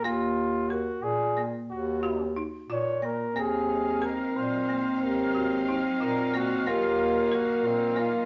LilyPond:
<<
  \new Staff \with { instrumentName = "Flugelhorn" } { \time 5/8 \key ees \dorian \tempo 4 = 91 f'4 ges'8 aes'8 r8 | ges'4 r8 des''8 bes'8 | aes'4 bes'8 c''4 | bes'4 r8 bes'8 ges'8 |
f'4 ges'8 c'8 f'8 | }
  \new Staff \with { instrumentName = "Marimba" } { \time 5/8 \key ees \dorian bes4 bes'4 bes8~ | bes8 ges'8 ees'8 f'8 bes8 | bes4 bes'4 bes8~ | bes8 ges'8 ees'8 f'8 bes8 |
bes4 bes'4 bes8 | }
  \new Staff \with { instrumentName = "String section" } { \time 5/8 \key ees \dorian r2 r8 | r2 r8 | <ges ees' f''>2~ <ges ees' f''>8~ | <ges ees' f''>2~ <ges ees' f''>8~ |
<ges ees' f''>2~ <ges ees' f''>8 | }
  \new Staff \with { instrumentName = "French horn" } { \time 5/8 \key ees \dorian r2 r8 | r2 r8 | c'2~ c'8~ | c'2~ c'8 |
bes2~ bes8 | }
  \new Staff \with { instrumentName = "Bass clarinet" } { \clef bass \time 5/8 \key ees \dorian ees,4. bes,4 | ees,4. bes,4 | ees,4. bes,4 | ees,4. bes,4 |
ees,4. bes,4 | }
>>